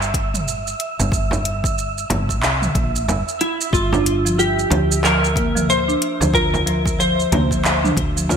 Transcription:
Already playing: G1 E5
0.02 shaker
0.14 kick, closed hi-hat
0.34 mid tom, shaker
0.48 shaker
0.67 shaker
0.80 closed hi-hat
0.99 G1, frame drum, shaker
1.12 kick, shaker
1.31 frame drum, shaker
1.45 closed hi-hat
1.64 kick, shaker
1.78 shaker
1.98 shaker
2.10 G1, closed hi-hat, mid tom, frame drum
2.29 kick, shaker
2.43 C2, clap, shaker
2.62 mid tom, shaker
2.75 A#1, kick, closed hi-hat, mid tom
2.96 shaker
3.08 G1, frame drum, shaker
3.28 shaker
3.41 E4, closed hi-hat
3.61 shaker
3.73 G1 F4, kick, shaker
3.93 D4, frame drum, shaker
4.06 closed hi-hat
4.25 F3, shaker
4.38 F4 G4, shaker
4.59 shaker
4.70 D2 F3, closed hi-hat, frame drum
4.92 shaker
5.04 F3 A#4, clap, shaker
5.24 shaker
5.36 A#3, kick, closed hi-hat
5.55 F3, mid tom, shaker
5.70 C5, shaker
5.88 D4, shaker
6.02 closed hi-hat
6.21 D2 F3, frame drum, shaker
6.34 F4 A#4, kick, shaker
6.54 frame drum, shaker
6.67 F3, closed hi-hat
6.86 kick, shaker
6.99 F3 C5, shaker
7.20 shaker
7.32 D2 A#3, closed hi-hat, mid tom, frame drum
7.51 F3, kick, shaker
7.65 clap, shaker
7.84 D4, mid tom, shaker
7.97 D2, kick, closed hi-hat
8.17 F3, shaker
8.29 F4, frame drum, shaker

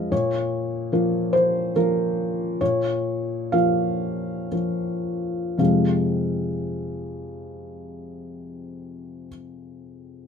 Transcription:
Already playing: F3 G#3 F4 D#5 F5
0.12 A#2 C#5
0.92 F3 A#3 F4
1.33 C5
1.76 F3 A#3 F4 A#4
2.61 A#2 C#5
3.52 F3 A#3 F4 F5
4.52 F3 A#3 F4
5.58 F2 C3 G#3 C4 F4 G#4 F5

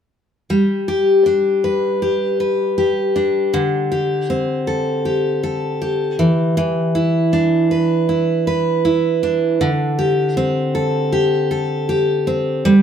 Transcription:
0.50 G3
0.88 G4
1.26 D4
1.64 B4
2.02 G4
2.40 B4
2.78 G4
3.16 D4
3.54 D3
3.92 G4
4.30 C4
4.67 A4
5.05 G4
5.43 A4
5.82 G4
6.19 E3
6.57 E3
6.95 E4
7.33 D4
7.71 B4
8.09 E4
8.47 B4
8.85 E4
9.23 D4
9.61 D3
9.99 G4
10.37 C4
10.75 A4
11.12 G4
11.51 A4
11.89 G4
12.27 C4
12.65 G3

